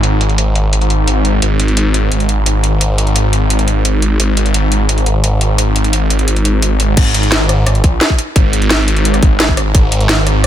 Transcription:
0.00 1.40 G#1 medium
0.00 closed hi-hat medium
0.21 closed hi-hat medium
0.29 closed hi-hat soft
0.38 closed hi-hat medium
0.55 closed hi-hat medium
0.73 closed hi-hat medium
0.81 closed hi-hat soft
0.90 closed hi-hat medium
1.08 closed hi-hat medium
1.25 closed hi-hat medium
1.42 6.95 G#1 medium
1.42 closed hi-hat medium
1.60 closed hi-hat medium
1.68 closed hi-hat soft
1.77 closed hi-hat medium
1.94 closed hi-hat medium
2.12 closed hi-hat medium
2.20 closed hi-hat soft
2.29 closed hi-hat medium
2.46 closed hi-hat medium
2.64 closed hi-hat medium
2.81 closed hi-hat medium
2.98 closed hi-hat medium
3.07 closed hi-hat soft
3.16 closed hi-hat medium
3.33 closed hi-hat medium
3.50 closed hi-hat medium
3.59 closed hi-hat soft
3.68 closed hi-hat medium
3.85 closed hi-hat medium
4.02 closed hi-hat medium
4.20 closed hi-hat medium
4.37 closed hi-hat medium
4.46 closed hi-hat soft
4.54 closed hi-hat medium
4.72 closed hi-hat medium
4.89 closed hi-hat loud
4.98 closed hi-hat soft
5.06 closed hi-hat medium
5.24 closed hi-hat medium
5.41 closed hi-hat medium
5.58 closed hi-hat loud
5.76 closed hi-hat medium
5.84 closed hi-hat soft
5.93 closed hi-hat medium
6.10 closed hi-hat medium
6.19 closed hi-hat soft
6.28 closed hi-hat loud
6.36 closed hi-hat soft
6.45 closed hi-hat medium
6.62 closed hi-hat medium
6.80 closed hi-hat medium
6.97 7.82 G#1 loud
6.97 kick loud
6.97 closed hi-hat loud
6.97 crash loud
7.14 closed hi-hat medium
7.23 closed hi-hat soft
7.32 snare loud
7.32 closed hi-hat medium
7.49 cross-stick soft
7.49 closed hi-hat medium
7.66 cross-stick medium
7.66 closed hi-hat loud
7.75 closed hi-hat soft
7.84 8.00 A#1 loud
7.84 kick loud
7.84 closed hi-hat medium
8.01 snare loud
8.01 closed hi-hat medium
8.10 kick medium
8.18 closed hi-hat medium
8.36 9.21 G#1 loud
8.36 kick loud
8.36 closed hi-hat loud
8.53 closed hi-hat medium
8.62 closed hi-hat soft
8.71 snare loud
8.71 closed hi-hat medium
8.88 closed hi-hat medium
8.97 closed hi-hat soft
9.05 closed hi-hat medium
9.14 cross-stick soft
9.14 closed hi-hat soft
9.23 9.73 G#1 loud
9.23 kick loud
9.23 closed hi-hat medium
9.40 snare loud
9.40 closed hi-hat medium
9.49 kick medium
9.57 cross-stick medium
9.57 closed hi-hat medium
9.75 10.47 G#1 loud
9.75 kick loud
9.75 closed hi-hat medium
9.92 closed hi-hat medium
10.01 closed hi-hat soft
10.09 snare loud
10.09 closed hi-hat medium
10.27 cross-stick soft
10.27 closed hi-hat medium

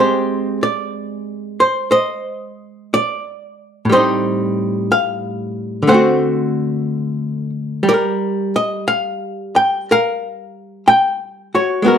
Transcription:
0.00 3.87 G#3 medium
0.00 3.88 C4 medium
0.00 1.90 G4 medium
0.00 0.57 C5 medium
0.63 1.60 D5 medium
1.60 1.90 C5 medium
1.91 3.84 C5 medium
1.91 2.92 D#5 medium
2.94 3.86 D5 medium
3.85 5.85 A2 soft
3.89 5.87 G3 soft
3.89 5.89 C4 soft
3.89 4.91 C5 medium
3.89 4.92 D#5 medium
3.97 5.90 D#4 soft
4.92 5.84 F5 medium
5.83 7.83 D3 soft
5.87 7.83 A3 soft
5.87 7.88 C4 medium
5.87 7.82 C5 medium
5.87 7.49 F#5 medium
5.94 7.89 F#4 medium
7.83 11.81 G3 soft
7.89 7.93 A#4 medium
7.89 7.93 D5 medium
7.94 9.90 A#4 soft
8.56 8.87 D#5 medium
8.88 9.54 F5 medium
9.56 9.88 G5 medium
9.91 11.82 A#4 medium
9.91 10.83 F5 medium
10.88 11.53 G5 loud
11.55 11.85 F#4 soft
11.55 11.87 C#5 medium
11.82 11.98 G#3 soft
11.82 11.98 B3 medium
11.82 11.98 F#4 medium
11.88 11.98 A#4 medium

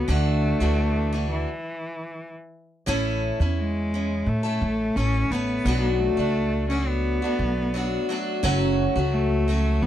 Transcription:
0.00 0.12 B3 medium
0.08 0.51 D2 loud
0.08 0.60 D3 medium
0.08 0.61 E3 medium
0.08 0.61 A3 medium
0.08 1.31 A3 loud
0.08 0.60 D4 medium
0.08 0.59 F#4 medium
0.60 1.44 D2 medium
0.60 1.14 D3 medium
0.60 1.11 E3 medium
0.60 1.13 A3 medium
0.60 1.13 D4 medium
0.60 1.13 F#4 medium
1.13 1.48 E3 medium
1.13 1.48 A3 medium
1.13 1.49 D4 medium
1.13 1.49 F#4 medium
1.32 2.32 E3 medium
2.86 3.30 A1 medium
2.86 3.39 A2 medium
2.86 3.39 E3 medium
2.86 3.40 A3 medium
2.86 3.40 C#4 medium
2.86 3.40 E4 medium
2.86 3.40 A4 loud
3.40 4.22 E2 medium
3.40 3.93 C#4 medium
3.40 3.92 E4 medium
3.58 4.30 G#3 medium
3.94 4.44 C#4 medium
3.94 4.43 E4 medium
4.26 4.55 A2 medium
4.26 4.98 A3 medium
4.43 4.96 A3 soft
4.43 4.97 C#4 soft
4.43 4.96 E4 medium
4.43 4.95 A4 medium
4.62 4.90 A1 medium
4.96 5.24 A1 loud
4.96 5.30 A3 medium
4.96 5.33 C#4 loud
4.96 5.31 C#4 medium
4.96 5.32 E4 medium
4.96 5.33 A4 medium
5.31 5.59 A1 medium
5.31 5.66 A3 medium
5.31 6.01 B3 loud
5.31 5.66 C#4 medium
5.31 5.67 E4 medium
5.31 5.67 A4 medium
5.65 6.08 B1 loud
5.65 6.18 B2 medium
5.65 6.18 F#3 medium
5.65 6.18 A3 medium
5.65 6.18 D4 medium
5.65 6.16 F#4 medium
6.00 6.69 A3 loud
6.17 7.18 C#2 medium
6.17 6.70 A3 soft
6.17 6.70 D4 medium
6.17 6.69 F#4 medium
6.70 7.22 F#3 medium
6.70 7.22 A3 medium
6.70 6.89 C#4 medium
6.70 7.23 D4 medium
6.70 7.21 F#4 medium
6.87 8.09 B3 medium
7.22 7.74 A3 medium
7.22 7.75 D4 soft
7.22 7.74 F#4 medium
7.39 7.96 B1 medium
7.74 8.08 F#3 medium
7.74 8.09 A3 medium
7.74 8.10 D4 medium
7.74 8.10 F#4 medium
8.09 8.42 F#3 medium
8.09 8.43 A3 medium
8.09 8.45 D4 medium
8.09 8.44 F#4 medium
8.43 8.86 F#1 loud
8.43 8.95 F#2 medium
8.43 8.96 C#3 loud
8.43 8.96 F#3 loud
8.43 8.96 A3 loud
8.43 8.96 C#4 medium
8.43 8.94 F#4 loud
8.95 9.78 C#2 loud
8.95 9.47 F#3 medium
8.95 9.48 A3 medium
8.95 9.48 C#4 medium
8.95 9.48 F#4 medium
9.13 9.84 A3 medium
9.48 9.87 F#3 medium
9.48 9.87 A3 medium
9.48 9.87 C#4 medium
9.48 9.87 F#4 medium
9.82 9.87 F#2 loud
9.82 9.87 B3 medium

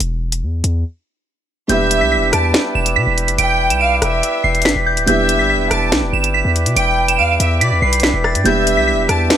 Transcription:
0.00 0.44 E1 loud
0.00 closed hi-hat medium
0.32 closed hi-hat medium
0.43 0.63 E2 medium
0.64 0.84 E2 loud
0.64 closed hi-hat medium
1.68 2.03 E1 loud
1.68 5.03 G3 medium
1.68 5.03 B3 medium
1.68 5.04 D4 medium
1.68 8.42 E4 medium
1.68 5.04 E4 medium
1.68 5.04 G4 medium
1.68 8.42 B4 medium
1.68 9.37 D5 medium
1.68 2.29 E5 loud
1.68 9.37 G5 medium
1.68 1.99 G6 medium
1.68 closed hi-hat medium
1.91 closed hi-hat medium
2.01 2.19 B1 loud
2.01 2.10 B6 medium
2.12 2.30 B6 medium
2.17 2.32 E1 loud
2.33 2.53 E2 loud
2.33 2.53 A5 medium
2.33 2.51 D7 medium
2.33 cross-stick medium
2.33 closed hi-hat medium
2.54 finger snap loud
2.54 snare loud
2.54 closed hi-hat medium
2.75 2.98 E1 loud
2.75 2.93 E7 medium
2.86 closed hi-hat medium
2.96 3.06 B2 loud
2.96 3.36 B6 medium
3.07 3.30 E1 loud
3.18 closed hi-hat medium
3.28 3.38 F1 loud
3.28 closed hi-hat medium
3.38 3.72 E1 loud
3.38 3.78 G5 loud
3.38 3.68 D7 loud
3.38 closed hi-hat medium
3.70 4.00 B1 loud
3.70 3.79 E7 medium
3.70 closed hi-hat medium
3.81 4.01 F5 medium
3.81 4.20 D7 medium
4.02 4.22 E1 loud
4.02 4.62 E5 medium
4.02 cross-stick loud
4.02 closed hi-hat medium
4.23 closed hi-hat medium
4.44 4.67 E1 loud
4.44 4.62 C7 medium
4.55 closed hi-hat soft
4.62 4.75 G1 loud
4.62 4.84 B6 medium
4.62 snare loud
4.62 closed hi-hat medium
4.66 finger snap loud
4.66 closed hi-hat medium
4.76 4.98 E1 loud
4.86 5.05 G6 medium
4.97 5.07 D1 loud
4.97 closed hi-hat medium
5.06 5.41 E1 loud
5.06 8.41 G3 medium
5.06 8.41 B3 medium
5.06 8.42 D4 medium
5.06 8.42 E4 medium
5.06 8.42 G4 medium
5.06 5.67 E5 loud
5.06 5.37 G6 loud
5.06 closed hi-hat medium
5.29 closed hi-hat medium
5.39 5.57 G1 loud
5.39 5.48 B6 medium
5.50 5.68 B6 medium
5.55 5.70 E1 loud
5.71 5.94 E1 loud
5.71 5.91 A5 medium
5.71 5.89 D7 medium
5.71 cross-stick loud
5.71 closed hi-hat medium
5.92 6.04 B1 loud
5.92 finger snap medium
5.92 snare loud
5.92 closed hi-hat medium
6.03 6.13 E1 loud
6.13 6.44 G1 loud
6.13 6.32 E7 medium
6.24 closed hi-hat medium
6.34 6.74 B6 medium
6.45 6.67 E2 loud
6.56 closed hi-hat medium
6.66 6.76 B2 loud
6.66 closed hi-hat medium
6.77 7.20 E1 loud
6.77 7.16 G5 loud
6.77 7.06 D7 loud
6.77 closed hi-hat medium
7.08 7.17 E7 medium
7.08 closed hi-hat medium
7.19 7.39 E2 loud
7.19 7.39 F5 medium
7.19 7.58 D7 medium
7.40 7.63 E2 loud
7.40 7.60 E5 medium
7.40 closed hi-hat medium
7.61 7.73 B2 loud
7.61 7.81 D5 medium
7.61 7.79 B6 medium
7.61 closed hi-hat medium
7.72 7.82 E2 loud
7.82 8.13 B1 loud
7.82 8.02 B4 medium
7.82 8.00 C7 medium
7.93 closed hi-hat medium
8.00 8.22 B6 medium
8.00 snare loud
8.00 closed hi-hat medium
8.04 finger snap loud
8.04 closed hi-hat soft
8.14 8.36 E1 loud
8.24 8.43 A6 medium
8.24 cross-stick medium
8.35 8.45 G2 loud
8.35 closed hi-hat medium
8.44 8.79 E1 loud
8.44 9.37 G3 medium
8.44 9.37 B3 medium
8.44 9.37 D4 medium
8.44 9.37 E4 medium
8.44 9.37 G4 medium
8.44 9.37 B4 medium
8.44 9.05 E5 loud
8.44 8.75 G6 medium
8.44 closed hi-hat medium
8.67 closed hi-hat medium
8.77 8.95 B1 loud
8.77 8.86 B6 medium
8.88 9.06 B6 medium
8.93 9.08 E1 loud
9.09 9.29 E2 loud
9.09 9.29 A5 medium
9.09 9.27 D7 medium
9.09 cross-stick medium
9.09 closed hi-hat medium
9.30 finger snap medium
9.30 snare loud
9.30 closed hi-hat medium

